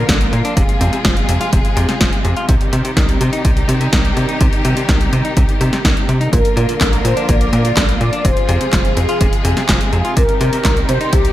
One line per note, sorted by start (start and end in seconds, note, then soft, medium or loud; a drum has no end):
0.00 0.55 D3 medium
0.00 2.45 F3 medium
0.00 0.55 A#3 medium
0.00 2.45 F4 medium
0.00 0.55 A#4 medium
0.09 0.29 A#1 loud
0.09 0.18 D3 medium
0.09 kick loud
0.09 snare loud
0.09 closed hi-hat medium
0.21 closed hi-hat soft
0.33 0.42 A#2 medium
0.33 0.43 A#2 medium
0.33 closed hi-hat soft
0.45 0.54 D4 medium
0.45 closed hi-hat soft
0.57 0.67 F1 loud
0.57 0.62 C3 loud
0.57 6.29 C3 medium
0.57 2.47 G#3 medium
0.57 2.47 G#4 medium
0.57 kick loud
0.57 closed hi-hat medium
0.69 closed hi-hat soft
0.81 0.91 F2 loud
0.81 0.92 C3 loud
0.81 closed hi-hat medium
0.93 0.98 C3 loud
0.93 closed hi-hat soft
1.05 1.25 F1 loud
1.05 1.14 F3 medium
1.05 kick loud
1.05 snare loud
1.05 closed hi-hat medium
1.17 closed hi-hat soft
1.29 1.39 F2 loud
1.29 1.38 C3 medium
1.29 closed hi-hat medium
1.41 1.50 F4 medium
1.41 closed hi-hat soft
1.53 1.63 F1 loud
1.53 1.58 C3 medium
1.53 kick loud
1.53 closed hi-hat medium
1.65 closed hi-hat soft
1.77 1.87 F2 loud
1.77 1.87 C3 loud
1.77 closed hi-hat medium
1.89 1.94 C3 loud
1.89 snare soft
1.89 closed hi-hat soft
2.01 2.11 F1 medium
2.01 2.10 F3 medium
2.01 kick loud
2.01 snare loud
2.01 closed hi-hat medium
2.13 closed hi-hat soft
2.25 2.35 F2 loud
2.25 2.34 C3 medium
2.25 closed hi-hat soft
2.37 2.46 F4 medium
2.37 closed hi-hat soft
2.49 2.59 C2 loud
2.49 2.54 C3 loud
2.49 6.29 D#3 medium
2.49 6.29 G3 medium
2.49 6.29 D#4 medium
2.49 6.29 G4 medium
2.49 kick loud
2.49 closed hi-hat medium
2.61 closed hi-hat soft
2.73 2.84 C3 loud
2.73 2.83 C3 loud
2.73 closed hi-hat medium
2.85 2.90 C3 loud
2.85 closed hi-hat soft
2.97 3.17 C2 loud
2.97 3.06 D#3 medium
2.97 kick loud
2.97 snare loud
2.97 closed hi-hat medium
3.09 closed hi-hat soft
3.21 3.31 C3 medium
3.21 3.30 C3 medium
3.21 closed hi-hat medium
3.33 3.42 D#4 medium
3.33 closed hi-hat soft
3.45 3.65 C2 loud
3.45 3.50 C3 medium
3.45 kick loud
3.45 closed hi-hat medium
3.57 closed hi-hat soft
3.69 3.80 C3 loud
3.69 3.88 C3 medium
3.69 closed hi-hat medium
3.81 3.86 C3 loud
3.81 closed hi-hat soft
3.93 4.13 C2 loud
3.93 4.02 D#3 medium
3.93 kick loud
3.93 snare loud
3.93 closed hi-hat medium
4.05 closed hi-hat soft
4.17 4.26 C3 medium
4.17 4.27 C3 medium
4.17 closed hi-hat soft
4.29 4.38 D#4 medium
4.29 closed hi-hat soft
4.41 4.51 C2 loud
4.41 4.46 C3 loud
4.41 kick loud
4.41 closed hi-hat medium
4.53 closed hi-hat soft
4.65 4.76 C3 loud
4.65 4.75 C3 loud
4.65 closed hi-hat medium
4.77 4.82 C3 loud
4.77 closed hi-hat soft
4.89 5.09 C2 loud
4.89 4.98 D#3 medium
4.89 kick loud
4.89 snare loud
4.89 closed hi-hat medium
5.01 closed hi-hat soft
5.13 5.23 C3 medium
5.13 5.22 C3 medium
5.13 closed hi-hat medium
5.25 5.34 D#4 medium
5.25 closed hi-hat soft
5.37 5.47 C2 loud
5.37 5.42 C3 medium
5.37 kick loud
5.37 closed hi-hat medium
5.49 closed hi-hat soft
5.61 5.71 C3 loud
5.61 5.72 C3 loud
5.61 closed hi-hat medium
5.73 5.78 C3 loud
5.73 snare soft
5.73 closed hi-hat soft
5.85 5.95 C2 loud
5.85 5.94 D#3 medium
5.85 kick loud
5.85 snare loud
5.85 closed hi-hat medium
5.97 closed hi-hat soft
6.09 6.28 C3 medium
6.09 6.18 C3 medium
6.09 closed hi-hat soft
6.21 6.30 D#4 medium
6.21 closed hi-hat soft
6.33 6.43 A#1 loud
6.33 6.38 A#2 loud
6.33 8.23 D3 medium
6.33 10.13 F3 medium
6.33 8.23 A#3 medium
6.33 10.13 F4 medium
6.33 6.55 A#4 loud
6.33 8.23 A#4 medium
6.33 kick loud
6.33 closed hi-hat medium
6.45 closed hi-hat soft
6.57 6.67 A#2 loud
6.57 6.68 A#2 loud
6.57 7.06 A#4 loud
6.57 closed hi-hat medium
6.69 6.74 A#2 loud
6.69 closed hi-hat soft
6.81 7.01 A#1 loud
6.81 6.90 D3 medium
6.81 kick loud
6.81 snare loud
6.81 clap medium
6.81 closed hi-hat medium
6.93 closed hi-hat soft
7.05 7.15 A#2 medium
7.05 7.14 A#2 medium
7.05 7.29 C5 loud
7.05 closed hi-hat medium
7.17 7.26 D4 medium
7.17 closed hi-hat soft
7.29 7.49 A#1 loud
7.29 7.34 A#2 loud
7.29 7.99 D5 loud
7.29 kick loud
7.29 closed hi-hat medium
7.41 closed hi-hat soft
7.53 7.64 A#2 loud
7.53 7.73 A#2 medium
7.53 closed hi-hat medium
7.65 7.70 A#2 loud
7.65 closed hi-hat soft
7.77 7.97 A#1 loud
7.77 7.86 D3 medium
7.77 kick loud
7.77 snare loud
7.77 clap medium
7.77 closed hi-hat medium
7.89 closed hi-hat soft
8.01 8.10 A#2 medium
8.01 8.11 A#2 medium
8.01 8.25 D5 loud
8.01 closed hi-hat soft
8.13 8.22 D4 medium
8.13 closed hi-hat soft
8.25 8.35 F1 loud
8.25 8.30 C3 loud
8.25 11.33 C3 medium
8.25 10.15 G#3 medium
8.25 10.15 G#4 medium
8.25 8.99 C5 loud
8.25 kick loud
8.25 closed hi-hat medium
8.37 closed hi-hat soft
8.49 8.59 F2 loud
8.49 8.60 C3 loud
8.49 closed hi-hat medium
8.61 8.66 C3 loud
8.61 closed hi-hat soft
8.73 8.93 F1 loud
8.73 8.82 F3 medium
8.73 kick loud
8.73 snare loud
8.73 clap medium
8.73 closed hi-hat medium
8.85 closed hi-hat soft
8.97 9.07 F2 loud
8.97 9.06 C3 medium
8.97 9.65 G#4 medium
8.97 closed hi-hat medium
9.09 9.18 F4 medium
9.09 closed hi-hat soft
9.21 9.31 F1 loud
9.21 9.26 C3 loud
9.21 kick loud
9.21 closed hi-hat medium
9.33 closed hi-hat soft
9.45 9.55 F2 loud
9.45 9.56 C3 loud
9.45 closed hi-hat medium
9.57 9.62 C3 loud
9.57 snare soft
9.57 closed hi-hat soft
9.69 9.79 F1 medium
9.69 9.78 F3 medium
9.69 kick loud
9.69 snare loud
9.69 clap medium
9.69 closed hi-hat medium
9.81 closed hi-hat soft
9.93 10.03 F2 loud
9.93 10.02 C3 medium
9.93 10.17 G#4 medium
9.93 closed hi-hat soft
10.05 10.14 F4 medium
10.05 closed hi-hat soft
10.17 10.27 C2 loud
10.17 10.22 C3 loud
10.17 11.33 D#3 medium
10.17 11.33 G3 medium
10.17 11.33 D#4 medium
10.17 11.33 G4 medium
10.17 10.40 A#4 loud
10.17 kick loud
10.17 closed hi-hat medium
10.29 closed hi-hat soft
10.41 10.52 C3 loud
10.41 10.51 C3 loud
10.41 10.90 A#4 loud
10.41 closed hi-hat medium
10.53 10.58 C3 loud
10.53 closed hi-hat soft
10.65 10.85 C2 loud
10.65 10.74 D#3 medium
10.65 kick loud
10.65 snare loud
10.65 clap medium
10.65 closed hi-hat medium
10.77 closed hi-hat soft
10.89 10.98 C3 medium
10.89 10.99 C3 medium
10.89 11.13 C5 loud
10.89 closed hi-hat medium
11.01 11.10 D#4 medium
11.01 closed hi-hat soft
11.13 11.33 C2 loud
11.13 11.18 C3 loud
11.13 11.33 G4 loud
11.13 kick loud
11.13 closed hi-hat medium
11.25 closed hi-hat soft